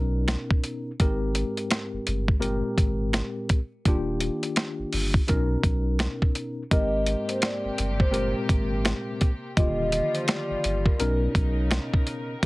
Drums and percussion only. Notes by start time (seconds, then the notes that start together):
0.28 finger snap, snare, closed hi-hat
0.51 kick
0.64 closed hi-hat
1.00 kick, closed hi-hat
1.35 closed hi-hat
1.57 closed hi-hat
1.71 finger snap, snare, closed hi-hat
2.07 closed hi-hat
2.28 kick
2.42 closed hi-hat
2.78 kick, closed hi-hat
3.13 finger snap, snare, closed hi-hat
3.49 kick, closed hi-hat
3.85 kick, closed hi-hat
4.20 closed hi-hat
4.43 closed hi-hat
4.56 finger snap, snare, closed hi-hat
4.93 open hi-hat
5.14 kick
5.28 kick, closed hi-hat
5.63 kick, closed hi-hat
5.99 finger snap, snare, closed hi-hat
6.22 kick
6.35 closed hi-hat
6.71 kick, closed hi-hat
7.06 closed hi-hat
7.29 closed hi-hat
7.42 finger snap, snare, closed hi-hat
7.78 closed hi-hat
8.00 kick
8.14 closed hi-hat
8.49 kick, closed hi-hat
8.85 finger snap, snare, closed hi-hat
9.21 kick, closed hi-hat
9.57 kick, closed hi-hat
9.92 closed hi-hat
10.15 closed hi-hat
10.28 finger snap, snare, closed hi-hat
10.64 closed hi-hat
10.86 kick
11.00 closed hi-hat
11.35 kick, closed hi-hat
11.71 finger snap, snare, closed hi-hat
11.94 kick
12.07 closed hi-hat